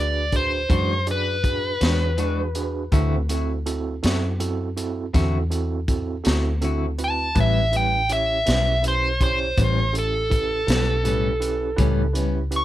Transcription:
Already playing: fingered electric bass D2, tine electric piano D4 F#4 G#4 B4
0.00 lead electric guitar D5
0.32 tine electric piano D4 F#4 G#4 B4, lead electric guitar C5, kick, closed hi-hat
0.69 fingered electric bass F#2, clean electric guitar E3 G#3 D4 F#4, tine electric piano D4 F#4 G#4 B4, kick, closed hi-hat
1.07 tine electric piano D4 F#4 G#4 D5, closed hi-hat
1.11 lead electric guitar B4
1.43 tine electric piano D4 F#4 G#4 B4, kick, closed hi-hat
1.81 fingered electric bass E2, clean electric guitar G#3 D4 F#4, tine electric piano D4 F#4 G#4 C#5, snare, closed hi-hat
2.17 clean electric guitar E3 G#3 D4 F#4, tine electric piano D4 F#4 G#4 B4, closed hi-hat
2.55 tine electric piano D4 F#4 G#4 B4, closed hi-hat
2.92 fingered electric bass D2, clean electric guitar D3 C4 E4 F#4, tine electric piano C4 E4 F#4 A4, kick, closed hi-hat
3.29 tine electric piano C4 E4 F#4 A4, clean electric guitar C4 E4 F#4, closed hi-hat
3.66 tine electric piano C4 E4 F#4 A4, closed hi-hat
4.03 fingered electric bass F#2, tine electric piano C4 E4 F#4 A4, clean electric guitar C4 E4 F#4, snare, closed hi-hat
4.40 tine electric piano C4 E4 F#4 A4, closed hi-hat
4.77 tine electric piano C4 E4 F#4 A4, closed hi-hat
5.14 fingered electric bass E2, clean electric guitar D3 C4 E4 F#4, tine electric piano C4 E4 F#4 A4, kick, snare, closed hi-hat
5.50 tine electric piano C4 E4 F#4 A4, closed hi-hat
5.88 tine electric piano C4 E4 F#4 A4, kick, closed hi-hat
6.24 fingered electric bass D2, tine electric piano C4 E4 F#4 A4, clean electric guitar C4 E4 F#4, snare, closed hi-hat
6.61 clean electric guitar D3 C4 E4 F#4, tine electric piano C4 E4 F#4 A4, closed hi-hat
6.98 tine electric piano C4 E4 F#4 B4, closed hi-hat
7.04 lead electric guitar A5
7.35 fingered electric bass A1, clean electric guitar A2 G3 B3 C#4, tine electric piano C#4 E4 G4 B4, kick, closed hi-hat
7.40 lead electric guitar E5
7.72 clean electric guitar G3 B3 C#4, tine electric piano C#4 E4 G4 B4, closed hi-hat
7.76 lead electric guitar G5
8.09 tine electric piano C#4 E4 G4 C#5, lead electric guitar E5, closed hi-hat
8.46 fingered electric bass B1, clean electric guitar G3 B3 C#4, tine electric piano C#4 E4 G4 B4, snare, closed hi-hat
8.82 tine electric piano C#4 E4 G4 B4, closed hi-hat
8.88 lead electric guitar C5
9.20 tine electric piano C#4 E4 G4 C#5, lead electric guitar C5, kick, closed hi-hat
9.57 fingered electric bass A1, clean electric guitar A2 G3 B3 C#4, tine electric piano C#4 E4 G4 B4, kick, closed hi-hat
9.93 tine electric piano C#4 E4 G4 A4, closed hi-hat
9.99 lead electric guitar A4
10.30 tine electric piano C#4 E4 G4 B4, kick, closed hi-hat
10.67 fingered electric bass B1, clean electric guitar G3 B3 C#4, tine electric piano C#4 E4 G4 B4, snare, closed hi-hat
11.04 clean electric guitar A2 G3 B3, tine electric piano C#4 E4 G4 B4, closed hi-hat
11.08 clean electric guitar C#4
11.40 tine electric piano C#4 E4 G4 B4, closed hi-hat
11.76 fingered electric bass C#2, clean electric guitar A2 G3 B3 C#4, tine electric piano C#4 E4 G4 B4, kick, closed hi-hat
12.13 clean electric guitar B3 C#4, tine electric piano C#4 E4 G4 B4, closed hi-hat
12.18 clean electric guitar G3
12.51 tine electric piano C#4 E4 G4 B4, closed hi-hat
12.56 lead electric guitar C#6

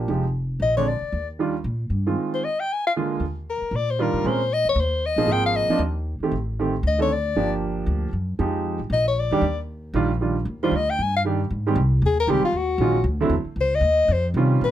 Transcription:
0.08 upright bass F1, grand piano F3 G#3 D#4 G4
0.60 upright bass A#1, soprano saxophone D#5
0.77 grand piano D3 G#3 C4 D4, soprano saxophone C#5
0.88 soprano saxophone D5
1.01 muted upright bass stroke
1.12 upright bass D#2
1.39 grand piano D#3 G3 D4 F4
1.64 upright bass A#2
1.90 upright bass G2
2.07 grand piano D#3 G#3 C4 F4
2.35 soprano saxophone C5
2.45 soprano saxophone D#5
2.60 soprano saxophone G5
2.73 soprano saxophone G#5
2.87 soprano saxophone F5
2.96 grand piano D3 G#3 A#3 F4
3.20 upright bass D#2
3.50 soprano saxophone A#4
3.61 muted upright bass stroke
3.71 upright bass A#2
3.76 soprano saxophone D5
3.91 soprano saxophone C5
3.99 grand piano D#3 G3 D4 F4, soprano saxophone A#4
4.13 upright bass A2
4.24 upright bass A#2, grand piano G#3 C4 C#4 A#4, soprano saxophone C5
4.54 soprano saxophone D#5
4.65 upright bass E2
4.69 soprano saxophone C#5
4.76 upright bass D#2
4.80 soprano saxophone C5
5.06 soprano saxophone D#5
5.16 upright bass A#1, grand piano F3 A#3 C4 G#4
5.27 upright bass G#1, grand piano F3 A#3 C4 G#4
5.32 soprano saxophone G5
5.46 soprano saxophone F5
5.56 soprano saxophone D#5
5.68 grand piano F3 A#3 C4 D4, muted upright bass stroke
5.79 upright bass D#2
6.20 grand piano D#3 A3 C4 G4, muted upright bass stroke
6.32 upright bass A1
6.59 grand piano D#3 A3 C4 G4
6.83 upright bass D2
6.87 soprano saxophone D#5
6.98 grand piano D#3 C4 D4 A4, soprano saxophone C#5
7.13 soprano saxophone D5
7.35 upright bass G1, grand piano F3 A#3 D4 G4
7.87 upright bass D2
8.13 upright bass F#2
8.39 upright bass F2, grand piano F3 G#3 D#4 G4
8.79 upright bass A1
8.90 upright bass A#1, soprano saxophone D#5
9.08 soprano saxophone C#5
9.19 soprano saxophone D5
9.31 upright bass D2, grand piano D#3 G3 D4 G4
9.41 upright bass D#2
9.94 upright bass A#1, grand piano D#3 G3 D4 F4
10.21 grand piano D#3 G3 D4 F4
10.45 upright bass D#2
10.63 grand piano D#3 G3 D4 F4, soprano saxophone C5
10.71 upright bass D2
10.76 soprano saxophone D#5
10.90 soprano saxophone G5
10.99 upright bass G2, soprano saxophone G#5
11.16 soprano saxophone F5
11.25 grand piano D#3 G3 D4 G4
11.51 upright bass G#2
11.67 grand piano D#3 G3 G#3 C4 G4
11.75 upright bass C2
12.02 upright bass D#2
12.06 soprano saxophone G#4
12.20 soprano saxophone A#4
12.27 upright bass C#2, grand piano D#3 G3 G#3 C4 G4, soprano saxophone G4
12.42 soprano saxophone F4, muted upright bass stroke
12.53 upright bass D#2
12.57 soprano saxophone F#4
12.78 upright bass A#1, grand piano D#3 F#3 G#3 C#4 F4
13.04 upright bass D2
13.21 grand piano D3 F#3 A3 C4 E4
13.30 upright bass E2
13.45 muted upright bass stroke
13.56 upright bass C#2
13.61 soprano saxophone C5
13.75 soprano saxophone D#5
13.81 upright bass D#2
14.08 upright bass F2
14.13 soprano saxophone C5
14.34 upright bass C3, grand piano D#3 G3 C4 C#4 F4
14.61 upright bass A#2, soprano saxophone B4

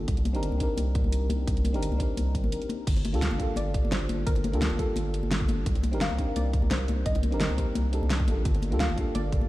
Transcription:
0.08 sub bass C2, kick, closed hi-hat
0.17 closed hi-hat
0.25 closed hi-hat, high conga
0.33 sub bass G1, fm electric piano C4 D4 D#4 G4 A#4, closed hi-hat
0.43 closed hi-hat
0.52 sub bass C2, high conga
0.57 fm electric piano C4 D4 D#4, kick, closed hi-hat
0.62 fm electric piano G4 A#4
0.77 sub bass C2, closed hi-hat, high conga
0.95 kick, closed hi-hat
1.04 sub bass C2, high conga
1.12 closed hi-hat
1.30 sub bass C2, closed hi-hat, high conga
1.47 sub bass C2, kick, closed hi-hat
1.57 closed hi-hat
1.65 closed hi-hat, high conga
1.73 sub bass G1, fm electric piano C4 D4 D#4 G4 A#4, closed hi-hat
1.83 closed hi-hat
1.92 sub bass C2, high conga
1.97 fm electric piano C4 D4 D#4, kick, closed hi-hat
2.01 fm electric piano G4 A#4
2.17 sub bass C2, closed hi-hat, high conga
2.35 kick, closed hi-hat
2.44 sub bass G1, high conga
2.52 closed hi-hat
2.62 closed hi-hat
2.69 closed hi-hat, high conga
2.87 sub bass G1, kick, closed hi-hat, crash
2.96 closed hi-hat, high bongo
3.05 closed hi-hat, high conga
3.12 sub bass D2, fm electric piano A#3 D4 F4 G4 A4, closed hi-hat
3.22 synth pluck F5, snare, closed hi-hat
3.31 sub bass G1, high conga
3.37 fm electric piano A#3 D4 F4, kick, closed hi-hat, high bongo
3.41 fm electric piano G4 A4
3.56 sub bass G1, synth pluck D5, closed hi-hat, high conga
3.74 kick, closed hi-hat
3.84 sub bass G1, high conga
3.92 synth pluck C5, snare, closed hi-hat, high bongo
4.09 sub bass G1, closed hi-hat, high conga
4.26 sub bass G1, synth pluck A#4, kick, closed hi-hat
4.36 closed hi-hat, high bongo
4.44 closed hi-hat, high conga
4.52 sub bass D2, fm electric piano A#3 D4 F4 G4 A4, closed hi-hat
4.62 snare, closed hi-hat
4.70 sub bass G1, high conga
4.76 fm electric piano A#3 D4 F4, synth pluck A4, kick, closed hi-hat, high bongo
4.80 fm electric piano G4 A4
4.96 sub bass G1, closed hi-hat, high conga
5.14 closed hi-hat
5.23 sub bass G1, high conga
5.31 snare, closed hi-hat
5.41 kick
5.48 sub bass G1, closed hi-hat, high conga
5.66 sub bass C2, kick, closed hi-hat
5.75 closed hi-hat, high bongo
5.83 closed hi-hat, high conga
5.91 sub bass G1, fm electric piano C4 D4 D#4 G4 A#4, closed hi-hat
6.01 synth pluck F5, snare, closed hi-hat
6.10 sub bass C2, high conga
6.16 fm electric piano C4 D4 D#4, kick, closed hi-hat, high bongo
6.20 fm electric piano G4 A#4
6.36 sub bass C2, synth pluck D5, closed hi-hat, high conga
6.53 kick, closed hi-hat
6.62 sub bass C2, high conga
6.71 synth pluck C5, snare, closed hi-hat, high bongo
6.88 sub bass C2, closed hi-hat, high conga
7.06 sub bass C2, synth pluck D#5, kick, closed hi-hat
7.15 closed hi-hat, high bongo
7.23 closed hi-hat, high conga
7.31 sub bass G1, fm electric piano C4 D4 D#4 G4 A#4, closed hi-hat
7.40 snare, closed hi-hat
7.50 sub bass C2, high conga
7.57 fm electric piano A#3 C4 D#4 G4 A#4, kick, closed hi-hat, high bongo
7.75 sub bass C2, closed hi-hat, high conga
7.92 fm electric piano C4 D4 D#4 G4 A4, closed hi-hat
8.02 sub bass C2, high conga
8.10 snare, closed hi-hat
8.20 kick
8.25 sub bass A#1, fm electric piano A#3 D4 F4, closed hi-hat, high conga
8.29 fm electric piano G4 A4
8.45 sub bass G1, kick, closed hi-hat
8.55 closed hi-hat, high bongo
8.62 closed hi-hat, high conga
8.71 sub bass D2, fm electric piano A#3 D4 F4 G4 A4, closed hi-hat
8.80 synth pluck F5, snare, closed hi-hat
8.89 sub bass G1, high conga
8.95 fm electric piano A#3 D4 F4, kick, closed hi-hat, high bongo
8.99 fm electric piano G4 A4
9.15 sub bass G1, synth pluck D5, closed hi-hat, high conga
9.32 kick, closed hi-hat
9.41 sub bass G1, high conga

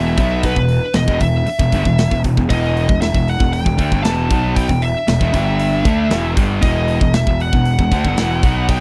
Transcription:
Already playing: picked electric bass E1, distorted electric guitar E2 B2 E3, lead electric guitar E5
0.17 picked electric bass B1, distorted electric guitar B2 F#3 B3, kick, open hi-hat
0.43 lead electric guitar B4, kick, open hi-hat
0.56 picked electric bass E1, distorted electric guitar E2 B2, kick
0.69 open hi-hat
0.94 picked electric bass E1, distorted electric guitar E2 B2, lead electric guitar D#5, snare, open hi-hat
1.06 picked electric bass E1, distorted electric guitar E2 B2, kick
1.20 picked electric bass E1, distorted electric guitar E2 B2, lead electric guitar E5, kick, open hi-hat
1.46 muted distorted electric guitar stroke, muted picked electric bass stroke, open hi-hat
1.59 picked electric bass E1, distorted electric guitar E2 B2, kick
1.72 picked electric bass G1, distorted electric guitar G2 D3, kick, open hi-hat
1.85 picked electric bass E1, distorted electric guitar E2 B2, kick
1.98 snare, open hi-hat
2.11 picked electric bass E1, distorted electric guitar E2 B2, kick
2.24 picked electric bass E1, distorted electric guitar E2 B2, kick, open hi-hat
2.37 picked electric bass E1, distorted electric guitar E2 B2, kick
2.49 picked electric bass E1, distorted electric guitar E2 B2 E3, lead electric guitar D#5, kick, open hi-hat
2.77 open hi-hat
2.88 picked electric bass E1, distorted electric guitar E2 B2, kick
3.01 lead electric guitar E5, snare, open hi-hat
3.14 picked electric bass E1, distorted electric guitar E2 B2, kick
3.28 lead electric guitar F#5, open hi-hat
3.40 picked electric bass E1, distorted electric guitar E2 B2, kick
3.53 lead electric guitar G5, open hi-hat
3.65 picked electric bass E1, distorted electric guitar E2 B2, kick
3.78 picked electric bass D2, distorted electric guitar D3 A3, kick, open hi-hat
3.91 picked electric bass G1, distorted electric guitar G2 D3, kick
4.03 picked electric bass E1, distorted electric guitar E2 B2 E3, lead electric guitar A5, snare, open hi-hat
4.30 picked electric bass B1, distorted electric guitar B2 F#3 B3, kick, open hi-hat
4.56 lead electric guitar G5, kick, open hi-hat
4.69 picked electric bass E1, distorted electric guitar E2 B2, kick
4.82 lead electric guitar E5, open hi-hat
5.07 picked electric bass E1, distorted electric guitar E2 B2, snare, open hi-hat
5.20 picked electric bass E1, distorted electric guitar E2 B2, kick
5.32 picked electric bass G1, distorted electric guitar G2 D3 G3, kick, open hi-hat
5.59 open hi-hat
5.84 picked electric bass D2, distorted electric guitar D3 A3 D4, kick, open hi-hat
6.10 picked electric bass E1, distorted electric guitar E2 B2 E3, snare, open hi-hat
6.36 picked electric bass G1, distorted electric guitar G2 D3 G3, kick, open hi-hat
6.62 picked electric bass E1, distorted electric guitar E2 B2 E3, lead electric guitar D#5, kick, open hi-hat
6.88 open hi-hat
7.01 picked electric bass E1, distorted electric guitar E2 B2, kick
7.14 lead electric guitar E5, snare, open hi-hat
7.27 picked electric bass E1, distorted electric guitar E2 B2, kick
7.40 lead electric guitar F#5, open hi-hat
7.53 picked electric bass E1, distorted electric guitar E2 B2, kick
7.65 open hi-hat
7.78 picked electric bass E1, distorted electric guitar E2 B2, kick
7.91 picked electric bass D2, distorted electric guitar D3 A3, kick, open hi-hat
8.05 picked electric bass G1, distorted electric guitar G2 D3, kick
8.17 picked electric bass E1, distorted electric guitar E2 B2 E3, snare, open hi-hat
8.43 picked electric bass B1, distorted electric guitar B2 F#3 B3, kick, open hi-hat
8.69 lead electric guitar G5, kick, open hi-hat

